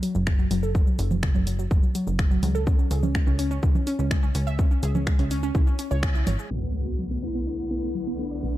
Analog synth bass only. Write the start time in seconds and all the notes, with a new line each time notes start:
0.15 F#1
0.51 F#1
0.99 F#1
1.35 F#1
1.71 F#1
2.07 F#1
2.43 C#2
2.91 C#2
3.27 C#2
3.63 C#2
3.99 C#2
4.35 C#2
4.83 C#2
5.19 C#2
5.55 C#2
5.91 C#2
6.27 G#1
6.51 B1
8.43 B1